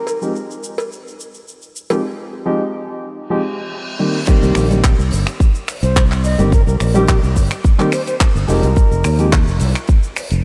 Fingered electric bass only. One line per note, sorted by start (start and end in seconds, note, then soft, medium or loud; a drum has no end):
4.28 muted fingered electric bass stroke soft
4.43 4.54 C2 loud
4.56 4.95 A#1 medium
4.99 5.10 C2 loud
5.12 5.24 G1 medium
5.83 6.35 C2 medium
6.39 6.62 G1 loud
6.67 6.78 C2 loud
6.81 7.19 A#1 medium
7.23 7.34 C2 loud
7.36 7.49 G1 medium
8.35 8.46 G1 medium
8.49 8.61 F1 loud
8.63 8.74 C2 loud
8.91 9.02 F1 loud
9.05 9.43 D#2 medium
9.48 9.58 F1 loud
9.61 9.73 C2 medium
10.31 10.44 F1 loud